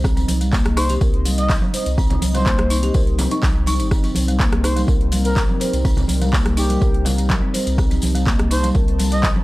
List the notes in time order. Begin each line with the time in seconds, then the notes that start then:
Already playing: C2 G3 C4 D#4
0.04 C4 D#5, kick, cross-stick, tambourine
0.17 C4, closed hi-hat, tambourine, muted conga
0.28 C2, open hi-hat, tambourine, high conga
0.41 G3, closed hi-hat, tambourine, muted conga
0.53 A#3, kick, clap, tambourine
0.65 C2, cross-stick, closed hi-hat, muted conga
0.77 D#4 C5, cross-stick, open hi-hat, tambourine
0.89 G4, closed hi-hat, tambourine, muted conga
1.01 C2 A#4, kick, tambourine
1.14 closed hi-hat
1.25 G3, open hi-hat, tambourine, muted conga
1.38 G3 D#5, closed hi-hat, tambourine
1.50 A#1, kick, clap, open hi-hat, tambourine, muted conga
1.62 C4, high conga
1.74 C5, open hi-hat, tambourine, muted conga, high conga
1.86 C2, closed hi-hat, tambourine
1.98 C4, kick, tambourine
2.10 C4, closed hi-hat, tambourine, muted conga, low conga
2.22 C2, open hi-hat, tambourine, high conga
2.34 G3 C5, closed hi-hat, tambourine, muted conga, high conga, low conga
2.46 A#3, kick, clap, tambourine
2.58 C2, cross-stick, closed hi-hat, muted conga
2.70 D#4, open hi-hat, tambourine
2.83 G4, closed hi-hat, tambourine, muted conga
2.94 C2 A#4, kick, tambourine
3.07 closed hi-hat
3.18 C4, open hi-hat, tambourine, muted conga, high conga, low conga
3.31 D#4, closed hi-hat, tambourine
3.42 C2, kick, clap, tambourine, muted conga, high conga
3.55 C4
3.66 D#4, open hi-hat, tambourine, muted conga
3.80 G1 D#4, closed hi-hat, tambourine
3.91 C4 A#4, kick, cross-stick, tambourine
4.04 C4, closed hi-hat, tambourine, muted conga
4.15 C2, open hi-hat, tambourine, high conga
4.28 G3, closed hi-hat, tambourine, muted conga
4.40 A#3, kick, clap, tambourine
4.52 C2, cross-stick, closed hi-hat, muted conga
4.63 D#4 C5, cross-stick, open hi-hat, tambourine
4.76 G3, closed hi-hat, tambourine, muted conga
4.88 C2 A#4, kick, tambourine
5.01 closed hi-hat
5.12 G3, open hi-hat, tambourine, muted conga
5.25 G3 A#4, closed hi-hat, tambourine
5.36 A#1, kick, clap, open hi-hat, tambourine, muted conga
5.49 C4, high conga
5.60 C5, open hi-hat, tambourine, muted conga, high conga
5.73 C2, closed hi-hat, tambourine
5.85 C4, kick, tambourine
5.97 C4, closed hi-hat, tambourine, muted conga, low conga
6.08 C2, open hi-hat, tambourine, high conga
6.22 G3, closed hi-hat, tambourine, muted conga, high conga
6.33 A#3, kick, clap, tambourine
6.45 C2, cross-stick, closed hi-hat, muted conga
6.57 D#4 G4, open hi-hat, tambourine
6.70 G3, closed hi-hat, tambourine, muted conga
6.81 C2 A#4, kick, tambourine
6.94 closed hi-hat
7.05 G3, open hi-hat, tambourine, muted conga, high conga, low conga
7.18 G3, closed hi-hat, tambourine
7.29 A#1, kick, clap, tambourine, muted conga, high conga
7.42 C4
7.54 C5, open hi-hat, tambourine, muted conga
7.67 C2, closed hi-hat, tambourine
7.78 C4 A5, kick, cross-stick, tambourine
7.91 C4, closed hi-hat, tambourine, muted conga
8.02 C2, open hi-hat, tambourine, high conga
8.15 G3, closed hi-hat, tambourine, muted conga
8.27 A#3, kick, clap, tambourine
8.39 C2, cross-stick, closed hi-hat, muted conga
8.51 D#4 C5, open hi-hat, tambourine
8.63 G3, closed hi-hat, tambourine, muted conga
8.75 C2 A#4, kick, tambourine
8.88 closed hi-hat
8.99 G3, open hi-hat, tambourine, muted conga
9.11 G3 D#5, closed hi-hat, tambourine
9.23 A#1, kick, clap, open hi-hat, tambourine, muted conga
9.36 C4, high conga